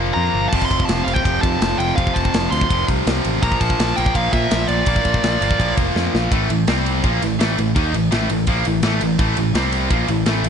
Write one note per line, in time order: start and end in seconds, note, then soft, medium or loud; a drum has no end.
0.00 0.10 F1 medium
0.00 0.51 A#2 medium
0.00 0.53 A#2 medium
0.00 0.53 F3 medium
0.00 0.55 F3 medium
0.00 0.52 A#3 medium
0.14 0.29 F2 medium
0.14 0.48 A#5 loud
0.34 0.46 G1 medium
0.49 1.23 F2 medium
0.49 1.23 C3 medium
0.49 0.65 A5 loud
0.49 kick loud
0.49 crash loud
0.53 0.65 F1 medium
0.53 1.25 F3 loud
0.62 0.85 C6 loud
0.62 kick medium
0.70 0.83 F1 medium
0.70 kick medium
0.70 ride medium
0.80 kick medium
0.85 1.01 F1 medium
0.85 1.06 A5 loud
0.85 ride loud
0.89 snare loud
1.04 1.19 F1 medium
1.04 1.99 F3 medium
1.04 1.14 F5 medium
1.04 ride medium
1.09 1.96 F2 medium
1.09 1.97 C3 medium
1.14 1.43 G5 loud
1.14 kick medium
1.23 1.37 F1 medium
1.23 1.94 F2 medium
1.23 1.96 C3 medium
1.23 1.98 F3 medium
1.23 kick medium
1.23 ride medium
1.41 1.56 F2 medium
1.41 1.80 A5 loud
1.41 kick medium
1.41 ride medium
1.61 1.74 F1 medium
1.61 snare loud
1.61 ride loud
1.78 1.91 F1 medium
1.78 1.95 G5 loud
1.78 ride medium
1.96 2.10 F1 loud
1.96 2.68 F2 medium
1.96 2.68 C3 medium
1.96 2.70 F3 loud
1.96 2.16 F5 loud
1.96 kick loud
1.96 ride loud
2.07 kick medium
2.14 2.29 F1 medium
2.14 2.49 A5 loud
2.14 kick medium
2.14 ride medium
2.25 kick medium
2.34 2.47 F1 medium
2.34 snare loud
2.34 ride loud
2.51 2.64 D2 medium
2.51 3.43 F2 medium
2.51 3.42 C3 medium
2.51 3.43 F3 medium
2.51 2.85 C6 loud
2.51 ride medium
2.61 kick medium
2.69 2.83 F1 medium
2.69 3.41 F2 medium
2.69 3.41 C3 medium
2.69 3.43 F3 medium
2.69 kick loud
2.69 ride loud
2.88 3.01 C2 medium
2.88 kick medium
2.88 ride medium
3.06 3.19 C2 medium
3.06 snare loud
3.06 ride loud
3.24 3.38 A1 medium
3.24 ride medium
3.42 3.55 A#1 loud
3.42 4.13 A#2 medium
3.42 4.14 F3 loud
3.42 4.15 A#3 loud
3.42 3.60 A#5 loud
3.42 kick loud
3.42 ride loud
3.52 kick medium
3.60 3.73 A#1 medium
3.60 3.98 A5 loud
3.60 kick medium
3.60 ride medium
3.70 kick medium
3.79 3.92 A#1 medium
3.79 snare loud
3.79 ride loud
3.96 4.10 A#1 loud
3.96 4.85 A#2 medium
3.96 4.87 F3 medium
3.96 4.86 A#3 loud
3.96 4.16 G5 loud
3.96 ride medium
4.06 kick medium
4.13 4.27 A#1 loud
4.13 4.85 A#2 medium
4.13 4.86 F3 medium
4.13 4.87 A#3 medium
4.13 4.32 F5 loud
4.13 kick loud
4.13 ride loud
4.33 4.46 A#2 loud
4.33 4.67 E5 loud
4.33 kick medium
4.33 ride medium
4.51 4.64 A#1 medium
4.51 snare loud
4.51 ride loud
4.68 4.81 A#1 medium
4.68 5.73 D5 medium
4.68 ride medium
4.86 4.99 A#1 medium
4.86 5.57 A#2 medium
4.86 5.59 F3 medium
4.86 5.59 A#3 medium
4.86 kick loud
4.86 ride loud
4.96 kick medium
5.05 5.18 A#1 medium
5.05 kick medium
5.05 ride medium
5.14 kick medium
5.23 5.36 A#1 medium
5.23 snare loud
5.23 ride loud
5.41 5.54 G1 medium
5.41 6.32 A#2 medium
5.41 6.31 F3 medium
5.41 6.31 A#3 medium
5.41 ride medium
5.51 kick medium
5.58 5.72 A#1 medium
5.58 6.30 A#2 medium
5.58 6.31 F3 medium
5.58 6.31 A#3 medium
5.58 kick medium
5.58 ride loud
5.77 5.90 F1 medium
5.77 kick medium
5.77 ride medium
5.95 6.08 F2 medium
5.95 snare medium
6.14 6.27 A#1 medium
6.14 snare medium
6.31 6.48 A1 medium
6.31 6.48 A2 loud
6.31 6.48 E3 loud
6.31 6.50 A3 loud
6.31 kick loud
6.31 ride loud
6.49 6.67 A1 medium
6.49 6.64 A2 medium
6.49 6.64 E3 medium
6.49 ride medium
6.67 7.01 C2 medium
6.67 7.03 C3 medium
6.67 7.03 G3 medium
6.67 7.04 C4 loud
6.67 snare loud
6.67 ride loud
6.86 ride medium
7.04 7.21 A#1 medium
7.04 7.21 A#2 medium
7.04 7.22 F3 loud
7.04 7.22 A#3 loud
7.04 kick loud
7.04 ride medium
7.22 7.39 A1 medium
7.22 7.36 A2 medium
7.22 7.37 E3 medium
7.22 ride medium
7.40 7.57 A1 medium
7.40 7.57 A2 medium
7.40 7.57 E3 loud
7.40 7.58 A3 loud
7.40 snare loud
7.40 ride loud
7.58 7.75 A1 medium
7.58 7.72 A2 medium
7.58 7.72 E3 medium
7.58 ride medium
7.75 7.93 D#2 medium
7.75 7.93 D#3 medium
7.75 7.93 A#3 medium
7.75 7.94 D#4 loud
7.75 kick loud
7.75 ride loud
7.93 8.10 A1 medium
7.93 8.08 A2 medium
7.93 8.08 E3 medium
7.93 ride medium
8.11 8.29 A1 loud
8.11 8.28 A2 medium
8.11 8.29 E3 loud
8.11 8.29 A3 loud
8.11 snare loud
8.11 ride loud
8.29 8.46 A1 medium
8.29 8.44 A2 medium
8.29 8.44 E3 medium
8.29 ride medium
8.47 8.64 A#1 loud
8.47 8.65 A#2 loud
8.47 8.65 F3 loud
8.47 8.66 A#3 loud
8.47 kick loud
8.47 ride loud
8.65 8.83 A1 medium
8.65 8.80 A2 medium
8.65 8.80 E3 medium
8.65 ride medium
8.83 9.00 A1 loud
8.83 9.01 A2 loud
8.83 9.01 E3 loud
8.83 9.01 A3 loud
8.83 snare loud
8.83 ride loud
9.01 9.18 A1 medium
9.01 9.16 A2 medium
9.01 9.16 E3 medium
9.01 ride medium
9.19 9.36 A1 medium
9.19 9.36 A2 medium
9.19 9.37 E3 loud
9.19 9.37 A3 loud
9.19 kick loud
9.19 ride loud
9.37 9.53 A1 medium
9.37 9.52 A2 medium
9.37 9.52 E3 medium
9.37 ride medium
9.54 9.88 C2 loud
9.54 9.89 C3 medium
9.54 9.89 G3 loud
9.54 9.90 C4 loud
9.54 snare loud
9.54 ride loud
9.72 ride medium
9.90 10.08 A#1 loud
9.90 10.07 A#2 loud
9.90 10.08 F3 loud
9.90 10.08 A#3 loud
9.90 kick loud
9.90 ride loud
10.08 10.26 A1 medium
10.08 10.23 A2 medium
10.08 10.23 E3 medium
10.08 ride medium
10.26 10.43 A1 medium
10.26 10.42 A2 loud
10.26 10.43 E3 loud
10.26 10.44 A3 loud
10.26 snare loud
10.26 ride loud
10.44 10.49 A1 medium
10.44 10.49 A2 medium
10.44 10.49 E3 medium
10.44 ride medium